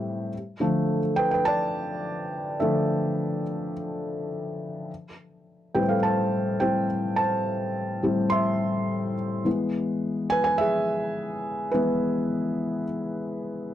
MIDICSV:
0, 0, Header, 1, 2, 480
1, 0, Start_track
1, 0, Tempo, 570885
1, 274, Time_signature, 4, 2, 24, 8
1, 11553, End_track
2, 0, Start_track
2, 0, Title_t, "Felt piano"
2, 0, Program_c, 0, 0
2, 0, Control_c, 0, 64, 127
2, 0, Note_on_c, 0, 45, 65
2, 0, Note_on_c, 0, 55, 60
2, 0, Note_on_c, 0, 60, 70
2, 0, Note_on_c, 0, 67, 66
2, 0, Note_on_c, 0, 76, 84
2, 239, Note_off_c, 0, 45, 0
2, 242, Note_off_c, 0, 55, 0
2, 245, Note_off_c, 0, 60, 0
2, 285, Note_off_c, 0, 67, 0
2, 285, Control_c, 0, 64, 0
2, 289, Note_off_c, 0, 76, 0
2, 457, Control_c, 0, 64, 127
2, 505, Note_on_c, 0, 50, 64
2, 510, Note_on_c, 0, 53, 60
2, 515, Note_on_c, 0, 57, 74
2, 829, Note_off_c, 0, 50, 0
2, 831, Note_off_c, 0, 53, 0
2, 834, Note_off_c, 0, 57, 0
2, 978, Note_on_c, 0, 79, 102
2, 997, Note_on_c, 0, 71, 81
2, 1090, Note_off_c, 0, 79, 0
2, 1103, Note_on_c, 0, 79, 90
2, 1108, Note_off_c, 0, 71, 0
2, 1124, Note_on_c, 0, 71, 77
2, 1222, Note_on_c, 0, 81, 105
2, 1231, Note_off_c, 0, 71, 0
2, 1232, Note_off_c, 0, 79, 0
2, 1241, Note_on_c, 0, 74, 88
2, 2154, Note_off_c, 0, 81, 0
2, 2164, Note_off_c, 0, 74, 0
2, 2185, Note_on_c, 0, 76, 76
2, 2191, Note_on_c, 0, 50, 54
2, 2196, Note_on_c, 0, 53, 55
2, 2201, Note_on_c, 0, 57, 59
2, 2202, Note_on_c, 0, 69, 65
2, 2879, Note_off_c, 0, 50, 0
2, 2882, Note_off_c, 0, 53, 0
2, 2884, Note_off_c, 0, 57, 0
2, 3116, Note_off_c, 0, 76, 0
2, 3125, Note_off_c, 0, 69, 0
2, 4124, Control_c, 0, 64, 0
2, 4255, Control_c, 0, 64, 127
2, 4830, Note_on_c, 0, 45, 63
2, 4831, Note_on_c, 0, 79, 82
2, 4835, Note_on_c, 0, 55, 58
2, 4839, Note_on_c, 0, 60, 65
2, 4842, Note_on_c, 0, 71, 64
2, 4873, Note_off_c, 0, 79, 0
2, 4884, Note_off_c, 0, 71, 0
2, 4949, Note_on_c, 0, 77, 71
2, 4959, Note_on_c, 0, 69, 61
2, 4991, Note_off_c, 0, 77, 0
2, 5001, Note_off_c, 0, 69, 0
2, 5069, Note_on_c, 0, 81, 89
2, 5083, Note_on_c, 0, 72, 72
2, 5519, Note_off_c, 0, 45, 0
2, 5521, Note_off_c, 0, 55, 0
2, 5523, Note_off_c, 0, 60, 0
2, 5525, Note_off_c, 0, 72, 0
2, 5549, Note_on_c, 0, 79, 95
2, 5552, Note_on_c, 0, 45, 54
2, 5556, Note_on_c, 0, 55, 52
2, 5561, Note_on_c, 0, 60, 60
2, 5561, Note_on_c, 0, 72, 74
2, 5566, Note_off_c, 0, 81, 0
2, 5769, Note_off_c, 0, 45, 0
2, 5771, Note_off_c, 0, 55, 0
2, 5774, Note_off_c, 0, 60, 0
2, 6004, Note_off_c, 0, 72, 0
2, 6023, Note_on_c, 0, 81, 96
2, 6038, Note_on_c, 0, 72, 73
2, 6046, Note_off_c, 0, 79, 0
2, 6749, Note_on_c, 0, 45, 61
2, 6755, Note_on_c, 0, 55, 58
2, 6760, Note_on_c, 0, 60, 64
2, 6955, Note_off_c, 0, 81, 0
2, 6962, Note_off_c, 0, 72, 0
2, 6976, Note_on_c, 0, 84, 98
2, 6996, Note_on_c, 0, 76, 81
2, 7672, Note_off_c, 0, 84, 0
2, 7681, Note_off_c, 0, 76, 0
2, 7918, Note_off_c, 0, 45, 0
2, 7921, Note_off_c, 0, 55, 0
2, 7924, Note_off_c, 0, 60, 0
2, 7945, Note_on_c, 0, 52, 58
2, 7952, Note_on_c, 0, 56, 52
2, 7955, Note_on_c, 0, 59, 60
2, 7965, Control_c, 0, 64, 0
2, 8131, Control_c, 0, 64, 127
2, 8659, Note_on_c, 0, 80, 108
2, 8677, Note_on_c, 0, 71, 87
2, 8765, Note_off_c, 0, 80, 0
2, 8778, Note_on_c, 0, 80, 103
2, 8786, Note_off_c, 0, 71, 0
2, 8798, Note_on_c, 0, 71, 84
2, 8895, Note_on_c, 0, 76, 111
2, 8908, Note_off_c, 0, 71, 0
2, 8910, Note_off_c, 0, 80, 0
2, 8918, Note_on_c, 0, 68, 77
2, 9836, Note_off_c, 0, 52, 0
2, 9839, Note_off_c, 0, 56, 0
2, 9841, Note_off_c, 0, 59, 0
2, 9843, Note_off_c, 0, 68, 0
2, 9850, Note_on_c, 0, 71, 78
2, 9869, Note_on_c, 0, 52, 60
2, 9875, Note_on_c, 0, 56, 52
2, 9879, Note_on_c, 0, 59, 64
2, 9880, Note_on_c, 0, 64, 64
2, 9894, Note_off_c, 0, 76, 0
2, 10788, Note_off_c, 0, 71, 0
2, 10803, Note_off_c, 0, 64, 0
2, 11553, Note_off_c, 0, 52, 0
2, 11553, Note_off_c, 0, 56, 0
2, 11553, Note_off_c, 0, 59, 0
2, 11553, End_track
0, 0, End_of_file